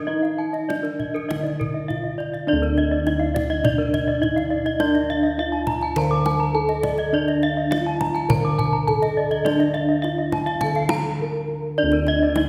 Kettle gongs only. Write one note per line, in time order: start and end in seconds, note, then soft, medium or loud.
0.00 0.65 D#3 medium
0.08 0.68 D#4 medium
0.69 0.77 D#4 soft
1.30 3.02 D3 soft
1.89 1.97 D#4 soft
2.47 4.18 D4 medium
2.53 5.95 D2 medium
3.06 3.14 D#4 soft
4.23 4.31 D#4 soft
4.80 6.50 D4 medium
5.38 5.46 D#4 soft
5.96 7.67 D3 medium
6.55 6.63 D#4 soft
7.13 8.83 D4 medium
7.71 7.79 D#4 soft
8.30 10.00 D3 medium
8.88 8.96 D#4 soft
9.45 11.16 D4 medium
10.05 10.13 D#4 soft
10.63 12.33 D3 medium
11.21 11.29 D#4 soft
11.78 12.49 D4 medium
11.83 12.49 D2 medium
12.38 12.46 D#4 soft